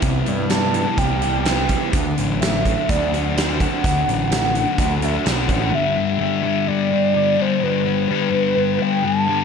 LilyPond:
<<
  \new Staff \with { instrumentName = "Soft synth lead" } { \time 4/4 \key g \major \tempo 4 = 126 r4 a''4 g''4 g''4 | r4 e''4 d''4 r8 fis''8~ | fis''2~ fis''8 e''8 fis''4 | e''4 e''4 d''4 d''8 c''8 |
b'2~ b'8 g''8 a''4 | }
  \new Staff \with { instrumentName = "Distorted electric guitar" } { \clef bass \time 4/4 \key g \major <c e' g' c''>8 g8 b8 e'8 g'8 e'8 c''8 e'8 | d8 fis8 a8 d'8 fis'8 d'8 c''8 d'8 | d8 fis8 a8 d'8 fis'8 d'8 c''8 d'8 | <g, d g>8 <d g>8 <g, d g>8 <d g>8 <g, d g>8 <d g>8 <g, d g>8 <d g>8 |
<g, d g>8 <d g>8 <g, d g>8 <d g>8 <g, d g>8 <d g>8 <g, d g>8 <d g>8 | }
  \new Staff \with { instrumentName = "Overdriven electric guitar" } { \clef bass \time 4/4 \key g \major <c e g b g'>4 g8 e8 g8 g'8 b8 e8 | d4 a8 d8 a8 fis'8 c'8 d8 | d4 a8 d8 a8 fis'8 c'8 d8 | r1 |
r1 | }
  \new Staff \with { instrumentName = "Picked electric bass" } { \clef bass \time 4/4 \key g \major c,8 g,4. c,2 | d,8 a,,4. d,2 | d,8 a,,4. d,4 b,,8 a,,8 | r1 |
r1 | }
  \new DrumStaff \with { instrumentName = "Drums" } \drummode { \time 4/4 <hh bd>8 hh8 <hh sn>8 hh8 <hh bd>8 hh8 <hh sn>8 <hh bd>8 | <hh bd>8 hh8 <hh sn>8 <hh bd>8 <hh bd>8 hh8 <hh sn>8 <hh bd>8 | <hh bd>8 hh8 <hh sn>8 hh8 <hh bd>8 hh8 <hh sn>8 <hh bd>8 | r4 r4 r4 r4 |
r4 r4 r4 r4 | }
>>